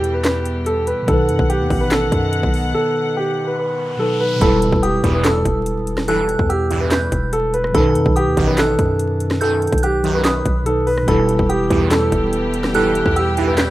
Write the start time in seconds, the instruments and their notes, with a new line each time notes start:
Already playing: 808-style bass E2, tine electric piano B2 G3 E4 B4, string section E3 G3 B3 G4, grand piano G4
0.04 closed hi-hat
0.14 grand piano B4
0.24 grand piano B4, snare, clap, closed hi-hat
0.46 closed hi-hat
0.66 grand piano A4, closed hi-hat
0.87 grand piano B4, closed hi-hat
1.02 tine electric piano B2 D#3
1.08 808-style bass B1, string section D#3 B3 F#5, tine electric piano D#4, grand piano A4, kick, closed hi-hat
1.14 tine electric piano B4
1.29 808-style bass F#2, closed hi-hat
1.39 808-style bass B1, kick
1.50 grand piano G4, closed hi-hat
1.60 808-style bass D#2
1.70 808-style bass A1, kick, open hi-hat
1.81 grand piano B4
1.91 grand piano A4, snare, clap, closed hi-hat
2.12 808-style bass F#2, kick, closed hi-hat
2.33 closed hi-hat
2.43 808-style bass B1, kick
2.54 open hi-hat
2.74 grand piano A4, riser
3.17 grand piano G4
3.47 grand piano B4
3.59 grand piano B4
3.97 tine electric piano B2 F#3 D#4, grand piano A4
4.02 tine electric piano B4
4.20 grand piano B4
4.36 tine electric piano B2 G3
4.41 808-style bass E1, analog polysynth B1 G2 E3, tine electric piano E4, grand piano A4, synth bell B5, kick, closed hi-hat, impact
4.47 tine electric piano B4
4.62 closed hi-hat
4.72 808-style bass E1, kick
4.83 grand piano G4, synth bell D#6, closed hi-hat
5.04 analog polysynth B1 G2 E3, 808-style bass E2, kick, closed hi-hat
5.14 grand piano B4
5.25 grand piano A4, synth bell E6, snare, clap, closed hi-hat
5.45 808-style bass E1, kick, closed hi-hat
5.66 closed hi-hat
5.87 closed hi-hat
5.98 cross-stick, snare
6.08 analog polysynth B1 G2 E3, grand piano A4, synth bell F#6, closed hi-hat
6.29 closed hi-hat
6.39 808-style bass E2, kick
6.49 grand piano G4, synth bell E6, closed hi-hat
6.70 analog polysynth B1 G2 E3, closed hi-hat
6.80 grand piano B4
6.91 grand piano B4, synth bell G6, snare, clap, closed hi-hat
7.12 808-style bass E1, kick, closed hi-hat
7.33 grand piano A4, closed hi-hat
7.54 grand piano B4, closed hi-hat
7.64 cross-stick
7.69 tine electric piano B2 D#3
7.74 808-style bass B1, analog polysynth B1 F#2 D#3, tine electric piano D#4, grand piano A4, synth bell B5, kick, closed hi-hat
7.80 tine electric piano B4
7.95 808-style bass F#2, closed hi-hat
8.06 808-style bass B1, kick
8.16 grand piano G4, synth bell D#6, closed hi-hat
8.27 808-style bass D#2
8.37 808-style bass A1, analog polysynth B1 F#2 D#3, kick, closed hi-hat
8.47 grand piano B4
8.58 grand piano A4, synth bell F#6, snare, clap, closed hi-hat
8.79 808-style bass F#2, kick, closed hi-hat
8.99 closed hi-hat
9.20 closed hi-hat
9.31 cross-stick, snare
9.41 analog polysynth B1 F#2 D#3, grand piano A4, synth bell G6, closed hi-hat
9.62 closed hi-hat
9.67 closed hi-hat
9.72 808-style bass B1, kick, closed hi-hat
9.78 closed hi-hat
9.83 grand piano G4, synth bell F#6, closed hi-hat
10.04 analog polysynth B1 F#2 D#3, closed hi-hat
10.14 grand piano B4
10.25 grand piano B4, synth bell D#6, snare, clap, closed hi-hat
10.45 808-style bass B1, kick, closed hi-hat
10.64 tine electric piano B2 F#3 D#4, grand piano A4, closed hi-hat
10.69 tine electric piano B4
10.87 grand piano B4, open hi-hat
10.98 cross-stick
11.03 tine electric piano B2 G3
11.08 808-style bass E1, analog polysynth B1 G2 E3, string section E3 G3 B3 G4, tine electric piano E4, grand piano A4, synth bell B5, kick, closed hi-hat
11.14 tine electric piano B4
11.29 closed hi-hat
11.39 808-style bass E1, kick
11.49 grand piano G4, synth bell D#6, closed hi-hat
11.70 analog polysynth B1 G2 E3, 808-style bass E2, kick, closed hi-hat
11.81 grand piano B4
11.91 grand piano A4, synth bell E6, snare, clap, closed hi-hat
12.12 808-style bass E1, kick, closed hi-hat
12.33 closed hi-hat
12.54 closed hi-hat
12.64 cross-stick, snare
12.74 analog polysynth B1 G2 E3, grand piano A4, synth bell F#6, closed hi-hat
12.95 closed hi-hat
13.06 808-style bass E2, kick
13.16 grand piano G4, synth bell E6, closed hi-hat
13.37 analog polysynth B1 G2 E3, closed hi-hat
13.47 grand piano B4
13.58 grand piano B4, synth bell G6, snare, clap, closed hi-hat